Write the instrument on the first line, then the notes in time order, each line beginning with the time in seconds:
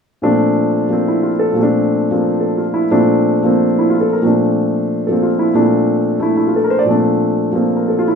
grand piano
0.22 A#2 F3 A3 C4 D4
0.89 F3 A#3 C4
1.08 E4
1.23 F4
1.39 A4
1.52 A#2 F3
1.57 A3 C4
1.63 D4
2.11 F3 A#3 C4
2.41 A4
2.58 F4
2.74 E4
2.91 A#2 F3 A3 C4 D4
3.43 F3 A#3 C4
3.79 E4
3.90 F4
4.01 A4
4.13 A#4
4.22 A#2 F3 A3 C4
4.26 D4
5.07 F3 A4
5.11 A#3 C4
5.23 F4
5.39 E4
5.54 A#2 F3 A3 C4 D4
6.20 A3 D4 E4
6.37 E4
6.47 F4
6.56 A4
6.64 A#4
6.70 C5
6.79 D5
6.84 A#2 F3 A3
6.89 C4 D4
7.52 F3 A#3 C4
7.76 A#4
7.88 A4
7.99 F4
8.08 E4